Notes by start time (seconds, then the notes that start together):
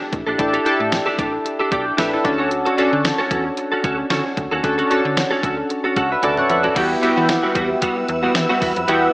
Already playing: D4 E4 G4 A4
0.01 muted clean electric guitar stroke
0.12 A1, muted clean electric guitar stroke, kick, closed hi-hat
0.27 A#1 D4 G4 A4
0.38 A1 D4 E4 G4 A4, muted clean electric guitar stroke, kick, closed hi-hat
0.53 D4 G4 A4, closed hi-hat
0.65 D4 E4 G4 A4, closed hi-hat
0.80 A2, muted clean electric guitar stroke
0.92 muted clean electric guitar stroke, snare, closed hi-hat
1.06 D4 G4 A4
1.18 A1 D4 G4 A4, kick, closed hi-hat
1.33 muted clean electric guitar stroke
1.45 muted clean electric guitar stroke, closed hi-hat
1.59 D4 G4 A4
1.71 B1 D4 G4 A4 D5 G5, kick, closed hi-hat
1.86 muted clean electric guitar stroke
1.97 A1 D4 G4 A4 B4 E5, snare, closed hi-hat
2.12 E4 A4, muted clean electric guitar stroke
2.24 D2 C#4 D4 F#4 A4, muted clean electric guitar stroke, kick, closed hi-hat
2.38 C#4 F#4 A4
2.51 muted clean electric guitar stroke, closed hi-hat
2.65 C#4 F#4 A4, closed hi-hat
2.77 C#4 D4 F#4 A4, closed hi-hat
2.92 D3, muted clean electric guitar stroke
3.04 muted clean electric guitar stroke, snare, closed hi-hat
3.18 C#4 F#4 A4
3.31 E2 C#4 F#4 A4, kick, closed hi-hat
3.45 muted clean electric guitar stroke
3.57 muted clean electric guitar stroke, closed hi-hat
3.72 C#4 F#4 A4
3.84 D2 C#4 F#4 A4, kick, closed hi-hat
3.98 muted clean electric guitar stroke
4.10 D3 C#4 F#4 A4, snare, closed hi-hat
4.25 muted clean electric guitar stroke
4.37 D2, muted clean electric guitar stroke, kick, closed hi-hat
4.51 D#2 C#4 F#4 A4
4.63 D2 C#4 D4 F#4 A4, muted clean electric guitar stroke, kick, closed hi-hat
4.78 C#4 F#4 A4, closed hi-hat
4.90 C#4 D4 F#4 A4, closed hi-hat
5.04 D3, muted clean electric guitar stroke
5.16 muted clean electric guitar stroke, snare, closed hi-hat
5.31 C#4 F#4 A4
5.43 D2 C#4 F#4 A4, kick, closed hi-hat
5.57 muted clean electric guitar stroke
5.70 muted clean electric guitar stroke, closed hi-hat
5.84 C#4 F#4 A4
5.96 C#2 C#4 F#4 A4 F#5, kick, closed hi-hat
6.11 B4 E5, muted clean electric guitar stroke
6.22 D2 C#4 F#4 A4 D5 A5, closed hi-hat, high tom
6.37 C#5 F#5, muted clean electric guitar stroke, mid tom
6.49 F2 B4 E5 F#5, muted clean electric guitar stroke, closed hi-hat, mid tom
6.63 C#4 F#4 A4 D5, floor tom
6.75 E2 G3 B3 E4 F#4 G4 B4 E5 F#5 E6, kick, closed hi-hat, crash
7.01 G3 B3 E4 F#4 G4, closed hi-hat
7.16 E3 G3 B3 F#4
7.29 muted clean electric guitar stroke, snare, closed hi-hat
7.43 G3 B3 F#4
7.55 E2 G3 B3 F#4, kick, closed hi-hat
7.70 muted clean electric guitar stroke
7.81 G3 B3 F#4, kick, closed hi-hat
7.97 muted clean electric guitar stroke
8.08 E2, muted clean electric guitar stroke, closed hi-hat
8.23 G3 B3 F#4
8.35 E3, snare, closed hi-hat
8.49 G3 B3 F#4
8.61 E2 G3 B3 F#4, kick, open hi-hat
8.76 F2, muted clean electric guitar stroke, closed hi-hat
8.88 E2 G3 B3 E4 F#4 G4, closed hi-hat